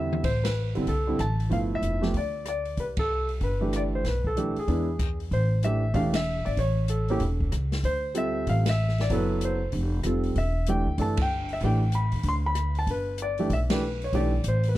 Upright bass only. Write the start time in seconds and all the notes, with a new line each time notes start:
Already playing: E2
0.24 A1
0.76 G1
0.87 C2
1.19 A1
1.51 G1
1.82 F1
2.14 D2
2.77 C2
3.41 G1
4.04 B1
4.57 muted upright bass stroke
4.68 E2
5.31 A1
5.94 E1
6.47 G#1
6.57 A1
7.20 E1
7.53 C#2
7.83 D2
8.47 A1
9.10 F#1
9.73 F1
10.05 F1
10.36 E1
10.87 D2
10.98 G1
11.61 A1
12.12 D#2
12.24 D2
12.87 G1
13.50 B1
14.13 B1
14.44 A1